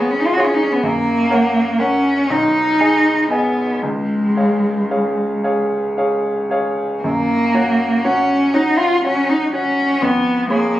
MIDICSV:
0, 0, Header, 1, 3, 480
1, 0, Start_track
1, 0, Key_signature, 6, "major"
1, 0, Tempo, 946372
1, 417, Time_signature, 6, 3, 24, 8
1, 907, Tempo, 1010101
1, 1387, Tempo, 1029160
1, 1867, Tempo, 1067616
1, 3307, Tempo, 991736
1, 5131, End_track
2, 0, Start_track
2, 0, Title_t, "Grand piano"
2, 0, Program_c, 0, 0
2, 0, Control_c, 0, 64, 127
2, 0, Note_on_c, 0, 68, 33
2, 0, Note_on_c, 0, 73, 37
2, 163, Note_off_c, 0, 68, 0
2, 165, Note_off_c, 0, 73, 0
2, 185, Note_on_c, 0, 68, 35
2, 187, Note_on_c, 0, 73, 36
2, 398, Note_off_c, 0, 68, 0
2, 399, Note_off_c, 0, 73, 0
2, 421, Note_on_c, 0, 42, 38
2, 426, Control_c, 0, 64, 0
2, 511, Control_c, 0, 64, 127
2, 651, Note_off_c, 0, 42, 0
2, 660, Note_on_c, 0, 70, 34
2, 662, Note_on_c, 0, 73, 32
2, 665, Note_on_c, 0, 78, 34
2, 888, Note_off_c, 0, 70, 0
2, 890, Note_off_c, 0, 73, 0
2, 891, Note_off_c, 0, 78, 0
2, 906, Note_on_c, 0, 70, 31
2, 908, Note_on_c, 0, 73, 30
2, 910, Note_on_c, 0, 78, 36
2, 1128, Note_off_c, 0, 70, 0
2, 1129, Note_off_c, 0, 73, 0
2, 1130, Note_off_c, 0, 78, 0
2, 1149, Note_on_c, 0, 35, 41
2, 1155, Control_c, 0, 64, 0
2, 1244, Control_c, 0, 64, 127
2, 1380, Note_off_c, 0, 35, 0
2, 1388, Note_on_c, 0, 68, 28
2, 1389, Note_on_c, 0, 75, 28
2, 1391, Note_on_c, 0, 80, 31
2, 1605, Note_off_c, 0, 68, 0
2, 1605, Note_off_c, 0, 75, 0
2, 1607, Note_off_c, 0, 80, 0
2, 1622, Note_on_c, 0, 68, 29
2, 1625, Note_on_c, 0, 75, 29
2, 1627, Note_on_c, 0, 80, 32
2, 1847, Note_off_c, 0, 68, 0
2, 1849, Note_off_c, 0, 75, 0
2, 1850, Note_off_c, 0, 80, 0
2, 1867, Note_on_c, 0, 37, 33
2, 1876, Control_c, 0, 64, 0
2, 1952, Control_c, 0, 64, 127
2, 2101, Note_off_c, 0, 37, 0
2, 2108, Note_on_c, 0, 68, 24
2, 2111, Note_on_c, 0, 73, 26
2, 2112, Note_on_c, 0, 77, 28
2, 2331, Note_off_c, 0, 68, 0
2, 2332, Note_off_c, 0, 73, 0
2, 2333, Note_off_c, 0, 77, 0
2, 2351, Note_on_c, 0, 68, 24
2, 2352, Note_on_c, 0, 73, 23
2, 2355, Note_on_c, 0, 77, 29
2, 2571, Note_off_c, 0, 68, 0
2, 2572, Note_off_c, 0, 73, 0
2, 2573, Note_off_c, 0, 77, 0
2, 2591, Note_on_c, 0, 68, 25
2, 2592, Note_on_c, 0, 73, 26
2, 2593, Note_on_c, 0, 77, 25
2, 2812, Note_off_c, 0, 68, 0
2, 2813, Note_off_c, 0, 73, 0
2, 2813, Note_off_c, 0, 77, 0
2, 2833, Note_on_c, 0, 68, 24
2, 2834, Note_on_c, 0, 77, 25
2, 2835, Note_on_c, 0, 73, 25
2, 3054, Note_off_c, 0, 68, 0
2, 3055, Note_off_c, 0, 73, 0
2, 3055, Note_off_c, 0, 77, 0
2, 3070, Note_on_c, 0, 68, 26
2, 3072, Note_on_c, 0, 73, 26
2, 3074, Note_on_c, 0, 77, 26
2, 3288, Note_off_c, 0, 68, 0
2, 3289, Note_off_c, 0, 73, 0
2, 3290, Note_off_c, 0, 77, 0
2, 3311, Note_on_c, 0, 42, 31
2, 3316, Control_c, 0, 64, 0
2, 3404, Control_c, 0, 64, 127
2, 3547, Note_off_c, 0, 42, 0
2, 3556, Note_on_c, 0, 66, 27
2, 3556, Note_on_c, 0, 73, 27
2, 3559, Note_on_c, 0, 78, 30
2, 3778, Note_off_c, 0, 66, 0
2, 3778, Note_off_c, 0, 73, 0
2, 3779, Note_off_c, 0, 78, 0
2, 3796, Note_on_c, 0, 66, 30
2, 3798, Note_on_c, 0, 73, 28
2, 3801, Note_on_c, 0, 78, 29
2, 4018, Note_off_c, 0, 66, 0
2, 4018, Note_off_c, 0, 73, 0
2, 4020, Note_off_c, 0, 78, 0
2, 4037, Note_on_c, 0, 66, 29
2, 4039, Note_on_c, 0, 73, 30
2, 4040, Note_on_c, 0, 78, 30
2, 4259, Note_off_c, 0, 66, 0
2, 4260, Note_off_c, 0, 73, 0
2, 4260, Note_off_c, 0, 78, 0
2, 4279, Note_on_c, 0, 66, 29
2, 4281, Note_on_c, 0, 73, 28
2, 4281, Note_on_c, 0, 78, 31
2, 4498, Note_off_c, 0, 66, 0
2, 4499, Note_off_c, 0, 73, 0
2, 4499, Note_off_c, 0, 78, 0
2, 4515, Note_on_c, 0, 66, 30
2, 4517, Note_on_c, 0, 73, 29
2, 4521, Note_on_c, 0, 78, 34
2, 4732, Note_off_c, 0, 66, 0
2, 4733, Note_off_c, 0, 73, 0
2, 4734, Note_off_c, 0, 78, 0
2, 4750, Note_on_c, 0, 41, 36
2, 4758, Control_c, 0, 64, 0
2, 4831, Control_c, 0, 64, 127
2, 4980, Note_off_c, 0, 41, 0
2, 4987, Note_on_c, 0, 68, 31
2, 4988, Note_on_c, 0, 73, 30
2, 4989, Note_on_c, 0, 83, 34
2, 5131, Note_off_c, 0, 68, 0
2, 5131, Note_off_c, 0, 73, 0
2, 5131, Note_off_c, 0, 83, 0
2, 5131, End_track
3, 0, Start_track
3, 0, Title_t, "Cello"
3, 0, Program_c, 1, 42
3, 0, Note_on_c, 1, 59, 46
3, 55, Note_on_c, 1, 61, 47
3, 63, Note_off_c, 1, 59, 0
3, 98, Note_on_c, 1, 63, 53
3, 106, Note_off_c, 1, 61, 0
3, 132, Note_on_c, 1, 65, 52
3, 139, Note_off_c, 1, 63, 0
3, 169, Note_on_c, 1, 66, 55
3, 176, Note_off_c, 1, 65, 0
3, 201, Note_on_c, 1, 65, 51
3, 208, Note_off_c, 1, 66, 0
3, 231, Note_on_c, 1, 61, 43
3, 239, Note_off_c, 1, 65, 0
3, 273, Note_on_c, 1, 63, 51
3, 281, Note_off_c, 1, 61, 0
3, 320, Note_on_c, 1, 61, 50
3, 328, Note_off_c, 1, 63, 0
3, 368, Note_on_c, 1, 59, 49
3, 376, Note_off_c, 1, 61, 0
3, 419, Note_on_c, 1, 58, 63
3, 427, Note_off_c, 1, 59, 0
3, 910, Note_on_c, 1, 61, 59
3, 917, Note_off_c, 1, 58, 0
3, 1152, Note_on_c, 1, 63, 64
3, 1159, Note_off_c, 1, 61, 0
3, 1621, Note_off_c, 1, 63, 0
3, 1623, Note_on_c, 1, 59, 51
3, 1868, Note_on_c, 1, 56, 46
3, 1875, Note_off_c, 1, 59, 0
3, 2589, Note_off_c, 1, 56, 0
3, 3307, Note_on_c, 1, 58, 60
3, 3799, Note_on_c, 1, 61, 58
3, 3806, Note_off_c, 1, 58, 0
3, 4038, Note_on_c, 1, 63, 55
3, 4045, Note_off_c, 1, 61, 0
3, 4155, Note_on_c, 1, 65, 55
3, 4162, Note_off_c, 1, 63, 0
3, 4277, Note_off_c, 1, 65, 0
3, 4285, Note_on_c, 1, 61, 56
3, 4401, Note_on_c, 1, 63, 54
3, 4409, Note_off_c, 1, 61, 0
3, 4515, Note_off_c, 1, 63, 0
3, 4518, Note_on_c, 1, 61, 60
3, 4753, Note_on_c, 1, 59, 61
3, 4760, Note_off_c, 1, 61, 0
3, 4988, Note_off_c, 1, 59, 0
3, 4992, Note_on_c, 1, 58, 62
3, 5131, Note_off_c, 1, 58, 0
3, 5131, End_track
0, 0, End_of_file